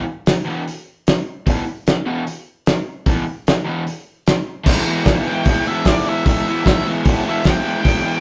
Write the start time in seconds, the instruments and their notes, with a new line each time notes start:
0.26 snare, open hi-hat
0.45 overdriven electric guitar E2 B2 E3
0.68 open hi-hat
1.07 snare, open hi-hat
1.46 overdriven electric guitar E2 B2 E3, kick, open hi-hat
1.87 snare, open hi-hat
2.06 overdriven electric guitar E2 B2 E3
2.27 open hi-hat
2.66 snare, open hi-hat
3.06 overdriven electric guitar E2 B2 E3, kick, open hi-hat
3.47 snare, open hi-hat
3.65 overdriven electric guitar E2 B2 E3
3.87 open hi-hat
4.27 snare, open hi-hat
4.64 overdriven electric guitar E3 G#3 B3, kick, crash
4.69 overdriven electric guitar E4
4.84 overdriven electric guitar B3 E4
4.89 overdriven electric guitar G#3
5.03 overdriven electric guitar E3 G#3 B3, kick, snare, open hi-hat
5.09 overdriven electric guitar E4
5.25 overdriven electric guitar G#3 B3 E4, lead electric guitar G5
5.30 overdriven electric guitar E3
5.45 overdriven electric guitar E3 G#3 B3, kick, open hi-hat
5.50 overdriven electric guitar E4
5.65 overdriven electric guitar G#3 B3 E4, lead electric guitar E5
5.70 overdriven electric guitar E3
5.85 overdriven electric guitar E3 G#3, lead electric guitar D5, kick, snare, open hi-hat
5.90 overdriven electric guitar B3 E4
6.06 overdriven electric guitar B3 E4, lead electric guitar E5
6.11 overdriven electric guitar G#3
6.25 overdriven electric guitar E3 G#3 B3, lead electric guitar E5, kick, open hi-hat
6.30 overdriven electric guitar E4
6.46 overdriven electric guitar B3 E4, lead electric guitar E5
6.51 overdriven electric guitar G#3
6.64 overdriven electric guitar E3 G#3 B3, kick, snare, open hi-hat
6.69 overdriven electric guitar E4
6.84 overdriven electric guitar G#3 B3 E4
6.89 overdriven electric guitar E3
7.04 overdriven electric guitar E3 G#3 B3, kick, open hi-hat
7.08 overdriven electric guitar E4
7.25 overdriven electric guitar G#3 B3 E4
7.29 overdriven electric guitar E3, lead electric guitar E5
7.43 overdriven electric guitar E3 G#3 B3, kick, snare, open hi-hat
7.48 overdriven electric guitar E4, lead electric guitar G5
7.61 overdriven electric guitar B3 E4
7.66 overdriven electric guitar G#3
7.82 overdriven electric guitar E3 G#3 B3, kick, open hi-hat
7.86 overdriven electric guitar E4
8.02 overdriven electric guitar B3 E4
8.06 overdriven electric guitar G#3